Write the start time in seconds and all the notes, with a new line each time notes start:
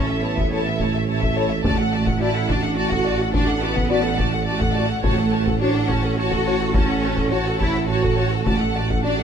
Already playing: A1 C#4
0.08 A4 E5
0.22 B3 E4 C#5 A5
0.36 A4 E5, taiko
0.50 E4 A4 C#5 A5
0.64 A4 E5
0.79 A3 E4 C#5 A5, taiko
0.93 A4 E5
1.07 E4 C#5 A5
1.21 A4 E5, taiko
1.36 E4 A4 C#5 A5
1.49 A4 E5
1.63 A1 A3 F#4 D5 A5, taiko
1.77 A4 F#5
1.93 F#4 D5 A5
2.07 A4 F#5, taiko
2.20 E4 F#4 D5 A5
2.35 A4 F#5
2.48 D4 F#4 D5 A5, taiko
2.63 A4 F#5
2.76 F#4 D5 A5
2.91 A4 F#5, taiko
3.04 F#4 D5 A5
3.18 A4 F#5
3.33 D4 F#4 D5 A5, taiko
3.47 A4 F#5
3.61 B3 F#4 D5 A5
3.75 A4 F#5, taiko
3.89 F#4 D5 A5
4.03 A4 F#5
4.18 A3 F#4 D5 A5, taiko
4.31 A4 F#5
4.45 F#4 D5 A5
4.59 A4 F#5, taiko
4.72 F#4 D5 A5
4.76 F#4
4.86 F#5
4.91 A4
5.00 A1 A3 C#5, taiko
5.05 F#4 A5
5.16 A4 F#5
5.31 F#4 C#5 A5
5.45 A4 F#5, taiko
5.59 D4 F#4 C#5 A5
5.73 A4 F#5
5.88 C#4 F#4 C#5 A5, taiko
6.03 A4 F#5
6.17 F#4 C#5 A5
6.32 A4 F#5, taiko
6.45 F#4 C#5 A5
6.59 A4 F#5
6.74 C#4 F#4 C#5 A5, taiko
6.90 A4 F#5
7.03 F#4 C#5 A5
7.17 A4 F#5, taiko
7.30 F#4 C#5 A5
7.46 A4 F#5
7.58 E4 C#5 A5, taiko
7.62 F#4
7.72 A4 F#5
7.77 A4
7.87 F#4 C#5 A5
8.02 A4 F#5, taiko
8.15 F#4 C#5 A5
8.29 A4 F#5
8.44 A1 A3 F#4 D5 A5, taiko
8.58 A4 F#5
8.74 F#4 D5 A5
8.88 A4 F#5, taiko
9.03 D4 F#4 D5 A5
9.18 A4 F#5